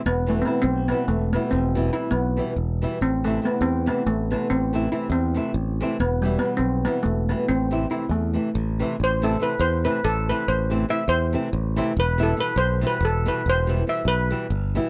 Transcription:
<<
  \new Staff \with { instrumentName = "Steel pan" } { \time 7/8 \key a \minor \tempo 4 = 141 b8 a16. c'32 b8 c'8 b8 a8 b8 | c'4 e'8 b4. r8 | c'8 a8 b8 c'8 b8 a8 b8 | c'4 e'8 c'4. r8 |
b8 g8 b8 c'8 b8 a8 b8 | c'4 e'8 a4. r8 | c''8 a'8 b'8 c''8 b'8 a'8 b'8 | c''4 e''8 c''4. r8 |
b'8 a'8 b'8 c''8 b'8 a'8 b'8 | c''4 e''8 b'4. r8 | }
  \new Staff \with { instrumentName = "Nylon-string guitar" } { \clef bass \time 7/8 \key a \minor r8 <b, e g b e'>8 <b, e g b e'>8 r8 <b, e g b e'>8 r8 <b, e g b e'>8 | r8 <b, e g b e'>8 <b, e g b e'>8 r8 <b, e g b e'>8 r8 <b, e g b e'>8 | r8 <c e a c' e'>8 <c e a c' e'>8 r8 <c e a c' e'>8 r8 <c e a c' e'>8 | r8 <c e a c' e'>8 <c e a c' e'>8 r8 <c e a c' e'>8 r8 <c e a c' e'>8 |
r8 <b, e g b e'>8 <b, e g b e'>8 r8 <b, e g b e'>8 r8 <b, e g b e'>8 | r8 <c e a c' e'>8 <c e a c' e'>8 r8 <c e a c' e'>8 r8 <c e a c' e'>8 | r8 <c e a c' e'>8 <c e a c' e'>8 r8 <c e a c' e'>8 r8 <c e a c' e'>8 | r8 <c e a c' e'>8 <c e a c' e'>8 r8 <c e a c' e'>8 r8 <c e a c' e'>8 |
r8 <b, e g b e'>8 <b, e g b e'>8 r8 <b, e g b e'>8 r8 <b, e g b e'>8 | r8 <b, e g b e'>8 <b, e g b e'>8 r8 <b, e g b e'>8 r8 <b, e g b e'>8 | }
  \new Staff \with { instrumentName = "Fingered electric bass" } { \clef bass \time 7/8 \key a \minor e,,4. b,,4 e,,4 | e,,4. b,,4 e,,4 | a,,4. e,4 a,,4 | a,,4. e,4 a,,4 |
e,,4. b,,4 e,,4 | a,,4. e,4 a,,4 | a,,4. e,4 a,,4 | a,,4. e,4 a,,4 |
e,,4. b,,4 e,,4 | e,,4. b,,4 g,,4 | }
>>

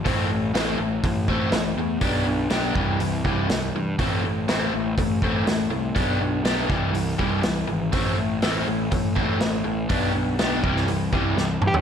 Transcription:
<<
  \new Staff \with { instrumentName = "Lead electric guitar" } { \time 4/4 \key a \minor \tempo 4 = 122 r1 | r1 | r1 | r1 |
r1 | r2. r8 g'8 | }
  \new Staff \with { instrumentName = "Overdriven electric guitar" } { \clef bass \time 4/4 \key a \minor <a, a c'>8 <a, a>8 <a, a c'>8 <a, a>8 <a, a>8 <a, a c'>8 <a, a>8 <a, a>8 | <b d' g'>8 <b d'>8 <b d' g'>8 <c e g>8 <c e>8 <c e g>8 <c e>8 <c e>8 | <a, a c'>8 <a, a>8 <a, a c'>8 <a, a>8 <a, a>8 <a, a c'>8 <a, a>8 <a, a>8 | <b d' g'>8 <b d'>8 <b d' g'>8 <c e g>8 <c e>8 <c e g>8 <c e>8 <c e>8 |
<a, a c'>8 <a, a>8 <a, a c'>8 <a, a>8 <a, a>8 <a, a c'>8 <a, a>8 <a, a>8 | <b d' g'>8 <b d'>8 <b d' g'>8 <c e g>8 <c e>8 <c e g>8 <c e>8 <c e>8 | }
  \new Staff \with { instrumentName = "Picked electric bass" } { \clef bass \time 4/4 \key a \minor a,,8 a,,8 a,,8 a,,8 a,,8 a,,8 a,,8 e,8 | b,,8 b,,8 b,,8 c,8 c,8 c,8 c,8 g,8 | a,,8 a,,8 a,,8 a,,8 a,,8 a,,8 a,,8 c,8 | b,,8 b,,8 b,,8 c,8 c,8 c,8 c,8 gis,,8 |
a,,8 a,,8 a,,8 a,,8 a,,8 a,,8 a,,8 a,,8 | b,,8 b,,8 b,,8 c,8 c,8 c,8 c,8 g,8 | }
  \new DrumStaff \with { instrumentName = "Drums" } \drummode { \time 4/4 <hho bd>4 <hho sn>4 <hho bd>8 bd8 <hho sn>4 | <hho bd>4 <hho sn>8 bd8 hho8 bd8 <hho sn>4 | <hho bd>4 <hho sn>4 <hho bd>8 bd8 <hho sn>4 | <hho bd>4 <hho sn>8 bd8 hho8 bd8 <hho sn>4 |
<hho bd>4 <hho sn>4 <hho bd>8 bd8 <hho sn>4 | <hho bd>4 <hho sn>8 bd16 sn16 hho8 bd8 sn8 toml16 tomfh16 | }
>>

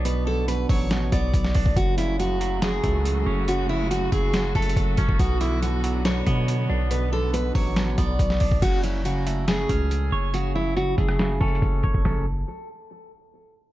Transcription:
<<
  \new Staff \with { instrumentName = "Steel-string acoustic guitar" } { \time 4/4 \key fis \minor \tempo 4 = 140 b'8 a'8 b'8 cis''4 d''4. | fis'8 e'8 fis'4 gis'2 | fis'8 e'8 fis'8 gis'4 a'4. | fis'8 e'8 fis'4 cis''2 |
b'8 a'8 b'8 cis''4 d''4. | fis'8 e'8 fis'4 gis'2 | fis'8 e'8 fis'8 gis'4 a'4. | a'8 r2. r8 | }
  \new Staff \with { instrumentName = "String section" } { \clef bass \time 4/4 \key fis \minor << { r1 | <fis fis'>1~ | <fis fis'>1~ | <fis fis'>1~ |
<fis fis'>1 | r1 | r1 | r1 | } \\ { r1 | <cis a>1~ | <cis a>1 | <d b>1~ |
<d b>1 | r1 | r1 | r1 | } >> }
  \new Staff \with { instrumentName = "Clean electric guitar" } { \clef bass \time 4/4 \key fis \minor <b, b d'>8 d8 b,8 fis8 b,8 b4 d'8 | fis,8 cis8 fis,8 fis8 fis,8 a4 cis'8 | fis,8 cis8 fis,8 fis8 fis,8 a4 cis'8 | b,8 d8 b,8 fis8 b,8 b4 d'8 |
b,8 d8 b,8 fis8 b,8 b4 d'8 | cis8 fis8 cis8 a8 cis8 cis'4 cis''8 | cis8 fis8 cis8 a8 cis8 cis'4 cis''8 | <cis fis a cis'>8 r2. r8 | }
  \new Staff \with { instrumentName = "808-style bass" } { \clef bass \time 4/4 \key fis \minor b,,4. a,,4 b,,8 b,,8 b,,16 b,,16 | fis,,2~ fis,,8 cis,4 fis,,8~ | fis,,4. fis,,4 fis,,8 fis,,8 fis,,16 fis,,16 | b,,2~ b,,8 b,4 b,,8~ |
b,,4. a,,4 b,,8 b,,8 b,,16 b,,16 | fis,,2~ fis,,8 cis,4 fis,,8~ | fis,,4. fis,,4 fis,,8 fis,,8 fis,,16 fis,,16 | fis,,4 r2. | }
  \new DrumStaff \with { instrumentName = "Drums" } \drummode { \time 4/4 hh4 hh8 <hho bd>8 <hh sn>8 <hh bd>8 <hh bd>16 sn16 <hho bd>16 bd16 | <hh bd>8 hh8 hh8 hh8 <hh sn>8 <hh bd>8 hh4 | hh4 hh8 <hh bd>8 \tuplet 3/2 { <hh sn>16 r16 r16 <hh bd>16 hh16 hh16 } <hh bd>8 <hh bd>16 bd16 | <hh bd>8 hh8 hh8 hh8 <hh sn>8 <hh bd>8 hh4 |
hh4 hh8 <hho bd>8 <hh sn>8 <hh bd>8 <hh bd>16 sn16 <hho bd>16 bd16 | <cymc hh bd>8 hh8 hh8 hh8 <hh sn>8 <hh bd>8 hh4 | hh4 hh8 <hh bd>16 ss16 \tuplet 3/2 { <hh sn>16 r16 r16 <hh bd>16 hh16 hh16 } <hh bd>8 <hh bd>16 bd16 | <hho sn tomfh>4 r4 r4 r4 | }
>>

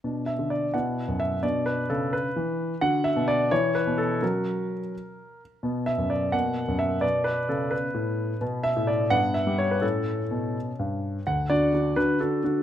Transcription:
<<
  \new Staff \with { instrumentName = "Grand piano" } { \time 6/8 \key b \minor \tempo 4. = 86 << { r8 e''8 d''8 fis''4 e''8 | d''8 b'8 a'8 b'4. | fis''8 e''8 d''8 cis''8 b'8 a'8 | ais'2~ ais'8 r8 |
r8 e''8 d''8 fis''4 e''8 | d''8 b'8 a'8 b'4. | \key d \major r8 e''8 d''8 fis''8 e''8 cis''16 b'16 | a'4. r4. |
fis''8 d''4 b'8 a'4 | } \\ { d'4. e'4. | d'2. | fis'4. e'4. | r2. |
b4. ais4. | b2. | b4. b4. | cis'2. |
r2. | } >> }
  \new Staff \with { instrumentName = "Grand piano" } { \clef bass \time 6/8 \key b \minor b,8. d8. b,8. fis,8. | b,4 cis4 e4 | d8. b,8. e8. b,8. | <fis cis' fis'>4. r4. |
b,8. fis,8. b,8. fis,8. | b,4 cis4 a,4 | \key d \major b,8. a,8. g,8. g8. | a,4 b,4 g,4 |
d,8 <d d' fis'>8 <d d' fis'>8 <d d' fis'>8 <d d' fis'>8 <d d' fis'>8 | }
>>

